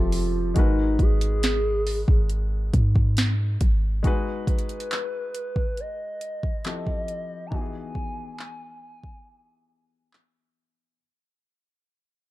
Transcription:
Already playing: 808-style bass F1, grand piano F3 C4 G4 A4 E5, soft synth lead F4
0.12 soft synth lead F4, open hi-hat
0.54 808-style bass G#1, grand piano G#3 D#4 F#4 A#4, kick, closed hi-hat
0.58 soft synth lead D#4, grand piano B4
0.99 808-style bass G#1, soft synth lead G#4, kick, closed hi-hat
1.21 closed hi-hat
1.43 snare, closed hi-hat
1.87 open hi-hat
2.08 808-style bass G#1, kick
2.30 closed hi-hat
2.74 808-style bass G#2, kick, closed hi-hat
2.96 kick
3.17 snare, closed hi-hat
3.61 808-style bass G#1, kick, closed hi-hat
4.03 grand piano G#3 D#4 F#4 G#4, kick, closed hi-hat
4.07 grand piano B4
4.47 soft synth lead B4, kick, closed hi-hat
4.59 closed hi-hat
4.69 closed hi-hat
4.80 closed hi-hat
4.91 clap, closed hi-hat
5.35 closed hi-hat
5.56 kick
5.77 soft synth lead D#5, closed hi-hat
6.21 closed hi-hat
6.43 kick
6.65 grand piano F3 C4 E4 G4 A4, clap, closed hi-hat
6.87 kick
7.08 closed hi-hat
7.46 grand piano E3, soft synth lead A#5
7.51 grand piano B3 D#4 F#4 G4, soft synth lead G#5, kick
7.61 grand piano G#4
7.95 kick
8.39 clap
9.04 kick
10.13 clap

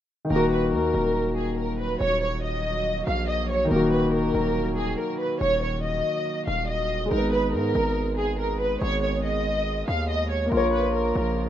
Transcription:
0.25 grand piano D#3
0.30 808-style bass D#1, analog synth pad D#3 F#3 A#3 F#4, grand piano A#3, violin section A#4
0.36 grand piano F#4
0.51 violin section B4
0.73 808-style bass D#2, violin section A#4
0.94 808-style bass D#1
1.37 violin section G#4
1.58 violin section A#4
1.79 violin section B4
2.00 808-style bass D#1, violin section C#5
2.22 violin section C#5
2.43 violin section D#5
3.07 808-style bass A#1, violin section F5
3.28 violin section D#5
3.49 violin section C#5
3.65 grand piano D#3
3.71 808-style bass D#1, grand piano A#3, violin section A#4
3.76 grand piano F#4
3.92 violin section B4
4.13 violin section A#4
4.35 808-style bass D#1
4.77 violin section G#4
4.98 violin section A#4
5.20 violin section B4
5.41 808-style bass D#1, violin section C#5
5.62 violin section C#5
5.83 violin section D#5
6.47 808-style bass D#1, violin section F5
6.69 violin section D#5
7.06 grand piano G#3
7.11 808-style bass G#1, analog synth pad G#3 B3 G#4, grand piano D#4, violin section A#4
7.17 grand piano B3
7.33 violin section B4
7.54 808-style bass G#2, violin section A#4
7.75 808-style bass G#1
8.18 violin section G#4
8.39 violin section A#4
8.60 violin section B4
8.81 808-style bass G#1, violin section C#5
9.03 violin section C#5
9.24 violin section D#5
9.88 808-style bass D#2, violin section F5
10.09 violin section D#5
10.30 violin section C#5
10.46 grand piano A#3
10.52 808-style bass A#1, analog synth pad C#3 F3 A#3 F4, grand piano F4, violin section A#4
10.57 grand piano C#5
10.73 violin section B4
10.94 violin section A#4
11.15 808-style bass A#1

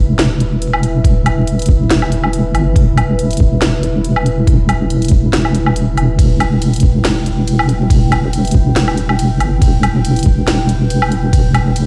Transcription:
Already playing: wobble bass E1, analog synth pad E4 B4 E5
0.19 snare, closed hi-hat
0.40 closed hi-hat
0.62 closed hi-hat
0.73 low woodblock
0.83 closed hi-hat
1.04 wobble bass E1, kick, closed hi-hat
1.26 closed hi-hat, low woodblock
1.47 closed hi-hat
1.59 closed hi-hat
1.62 closed hi-hat
1.66 kick, closed hi-hat
1.90 snare, closed hi-hat
2.02 low woodblock
2.12 closed hi-hat
2.24 low woodblock
2.33 closed hi-hat
2.54 wobble bass G1, closed hi-hat, low woodblock
2.76 wobble bass E1, kick, closed hi-hat
2.98 closed hi-hat, low woodblock
3.19 closed hi-hat
3.31 closed hi-hat
3.33 closed hi-hat
3.37 kick, closed hi-hat
3.62 snare, closed hi-hat
3.83 closed hi-hat
4.04 closed hi-hat
4.16 low woodblock
4.26 closed hi-hat
4.47 wobble bass E1, kick, closed hi-hat
4.69 closed hi-hat, low woodblock
4.90 closed hi-hat
5.02 closed hi-hat
5.05 closed hi-hat
5.08 kick, closed hi-hat
5.33 snare, closed hi-hat
5.45 low woodblock
5.55 closed hi-hat
5.66 low woodblock
5.76 wobble bass E1, closed hi-hat
5.97 wobble bass E1, closed hi-hat, low woodblock
6.19 wobble bass E1, analog synth pad G5, kick, closed hi-hat, ride
6.40 closed hi-hat, low woodblock
6.62 closed hi-hat, ride
6.74 closed hi-hat
6.76 closed hi-hat
6.80 kick, closed hi-hat
7.05 snare, closed hi-hat, ride
7.26 closed hi-hat
7.47 closed hi-hat, ride
7.59 low woodblock
7.69 closed hi-hat
7.90 wobble bass E1, kick, closed hi-hat, ride
8.12 closed hi-hat, low woodblock
8.33 closed hi-hat, ride
8.45 closed hi-hat
8.47 closed hi-hat
8.51 kick, closed hi-hat
8.76 snare, closed hi-hat, ride
8.88 low woodblock
8.97 closed hi-hat
9.09 low woodblock
9.19 closed hi-hat, ride
9.40 wobble bass G1, closed hi-hat, low woodblock
9.62 wobble bass E1, kick, closed hi-hat, ride
9.83 closed hi-hat, low woodblock
10.05 closed hi-hat, ride
10.16 closed hi-hat
10.19 closed hi-hat
10.23 kick, closed hi-hat
10.48 snare, closed hi-hat, ride
10.69 closed hi-hat
10.90 closed hi-hat, ride
11.02 low woodblock
11.12 closed hi-hat
11.33 wobble bass E1, kick, closed hi-hat, ride
11.54 closed hi-hat, low woodblock
11.76 closed hi-hat, ride

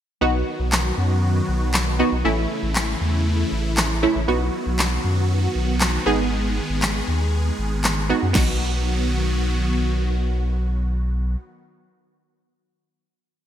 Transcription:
0.21 sub bass B1, supersaw synth D#3 F#3 B3 F#4, synth stab B3 D#4 F#4
0.60 sub bass B1
0.72 snare, clap
0.98 sub bass F#2
1.49 sub bass B1
1.74 snare, clap
1.99 synth stab B3 D#4 F#4
2.12 sub bass B1
2.25 sub bass A1, supersaw synth C#3 E3 A3 E4, synth stab A3 C#4 E4
2.63 sub bass A1
2.76 snare, clap
3.01 sub bass E2
3.52 sub bass A1
3.77 snare, clap
4.03 synth stab A3 C#4 E4
4.16 sub bass A1
4.28 sub bass B1, supersaw synth D#3 F#3 B3 F#4, synth stab B3 D#4 F#4
4.66 sub bass B1
4.79 snare, clap
5.04 sub bass F#2
5.55 sub bass B1
5.81 snare, clap
6.06 sub bass G#1, supersaw synth G#3 G#4, synth stab B3 D#4 G#4
6.70 sub bass G#1
6.82 snare, clap
7.08 sub bass D#2
7.59 sub bass G#1
7.84 snare, clap
8.09 synth stab B3 D#4 F#4
8.23 sub bass F#2
8.33 sub bass B1, supersaw synth D#3 F#3 B3 F#4, synth stab B3 D#4, kick, snare, crash
8.37 synth stab F#4

